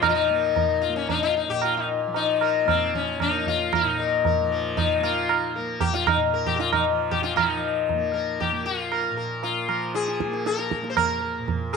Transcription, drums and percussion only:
0.03 tabla na, tabla ge
0.56 tabla tin, tabla ge
1.09 tabla tin, tabla ge
1.62 tabla na
2.14 tabla tin
2.41 tabla na
2.68 tabla na, tabla ge
2.94 tabla ge
3.20 tabla na, tabla ge
3.46 tabla ge
3.73 tabla na, tabla ge
4.25 tabla tin, tabla ge
4.77 tabla tin, tabla ge
5.04 tabla na
5.29 tabla na
5.80 tabla tin, tabla ge
5.94 tabla te
6.07 tabla na, tabla ge
6.46 tabla tin, tabla ge
6.60 tabla te
6.73 tabla na, tabla ge
7.11 tabla tin, tabla ge
7.24 tabla te
7.37 tabla na, tabla ge
7.89 tabla tin, tabla ge
8.41 tabla tin, tabla ge
8.92 tabla na
9.43 tabla tin
9.69 tabla na
9.95 tabla te
10.08 tabla te
10.20 tabla ke
10.34 tabla te
10.46 tabla te
10.59 tabla te
10.71 tabla ke
10.84 tabla te
10.97 tabla na, tabla ge
11.48 tabla tin, tabla ge
11.73 tabla na

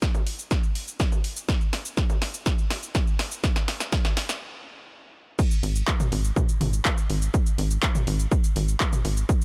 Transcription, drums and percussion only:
0.02 kick, snare, shaker
0.15 mid tom, shaker
0.27 open hi-hat
0.39 shaker
0.51 kick, snare, shaker
0.63 shaker
0.75 open hi-hat
0.88 shaker
1.00 kick, snare, shaker
1.12 mid tom, shaker
1.24 open hi-hat
1.36 shaker
1.49 kick, snare, shaker
1.61 shaker
1.73 snare, open hi-hat
1.85 shaker
1.97 kick, snare, shaker
2.10 mid tom, shaker
2.22 snare, open hi-hat
2.34 shaker
2.46 kick, snare, mid tom, shaker
2.58 shaker
2.70 snare, mid tom, open hi-hat
2.83 shaker
2.95 kick, snare, shaker
3.07 shaker
3.19 snare, open hi-hat
3.32 shaker
3.44 kick, snare, shaker
3.56 snare, shaker
3.68 snare, open hi-hat
3.80 snare, shaker
3.92 kick, snare, shaker
4.05 snare, mid tom, shaker
4.17 snare, open hi-hat
4.29 snare, shaker
5.39 kick, crash, shaker
5.51 shaker
5.63 open hi-hat
5.76 shaker
5.88 kick, clap, shaker
6.00 mid tom, shaker
6.12 open hi-hat
6.24 shaker
6.36 kick, mid tom, shaker
6.49 shaker
6.61 mid tom, open hi-hat
6.73 shaker
6.85 kick, clap, shaker
6.98 shaker
7.10 open hi-hat
7.22 shaker
7.34 kick, shaker
7.46 shaker
7.58 open hi-hat
7.71 shaker
7.83 kick, clap, shaker
7.95 mid tom, shaker
8.07 open hi-hat
8.20 shaker
8.32 kick, shaker
8.44 shaker
8.56 open hi-hat
8.68 shaker
8.80 kick, clap, shaker
8.93 mid tom, shaker
9.05 open hi-hat
9.17 shaker
9.29 kick, shaker

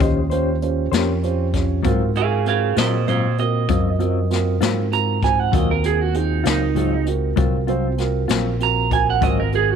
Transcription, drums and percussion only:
0.00 kick, closed hi-hat
0.31 closed hi-hat
0.62 closed hi-hat
0.92 snare, closed hi-hat
1.23 closed hi-hat
1.53 kick, snare, closed hi-hat
1.84 kick, closed hi-hat
2.15 closed hi-hat
2.46 closed hi-hat
2.76 snare, closed hi-hat
3.08 closed hi-hat
3.38 closed hi-hat
3.68 kick, closed hi-hat
4.00 closed hi-hat
4.31 snare, closed hi-hat
4.61 snare, closed hi-hat
4.92 closed hi-hat
5.22 kick, snare, closed hi-hat
5.53 kick, closed hi-hat
5.84 closed hi-hat
6.14 closed hi-hat
6.45 snare, closed hi-hat
6.76 closed hi-hat
7.06 closed hi-hat
7.37 kick, closed hi-hat
7.68 closed hi-hat
7.98 snare, closed hi-hat
8.29 snare, closed hi-hat
8.60 closed hi-hat
8.91 kick, closed hi-hat
9.22 kick, closed hi-hat
9.52 closed hi-hat

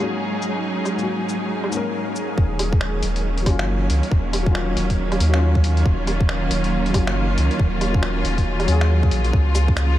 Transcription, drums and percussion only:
0.42 cabasa
0.85 cabasa, low woodblock
0.99 cabasa
1.29 cabasa
1.64 low woodblock
1.72 cabasa
2.16 cabasa
2.38 kick
2.59 closed hi-hat, low woodblock
2.73 kick
2.81 finger snap
3.03 closed hi-hat
3.16 closed hi-hat
3.38 closed hi-hat
3.46 kick, closed hi-hat, low woodblock
3.59 finger snap
3.90 closed hi-hat
4.03 closed hi-hat
4.11 kick
4.33 closed hi-hat, low woodblock
4.46 kick
4.55 finger snap
4.77 closed hi-hat
4.90 kick, closed hi-hat
5.12 closed hi-hat, low woodblock
5.20 closed hi-hat
5.34 finger snap
5.55 kick
5.64 closed hi-hat
5.77 closed hi-hat
5.86 kick
6.07 closed hi-hat, low woodblock
6.21 kick
6.29 finger snap
6.51 closed hi-hat
6.64 closed hi-hat
6.86 closed hi-hat
6.94 kick, closed hi-hat, low woodblock
7.07 finger snap
7.38 closed hi-hat
7.51 closed hi-hat
7.59 kick
7.81 closed hi-hat, low woodblock
7.94 kick
8.03 finger snap
8.25 closed hi-hat
8.38 kick, closed hi-hat
8.60 closed hi-hat, low woodblock
8.68 closed hi-hat
8.81 finger snap
9.03 kick
9.11 closed hi-hat
9.24 closed hi-hat
9.33 kick
9.55 closed hi-hat, cabasa, low woodblock
9.68 kick
9.77 finger snap, cabasa

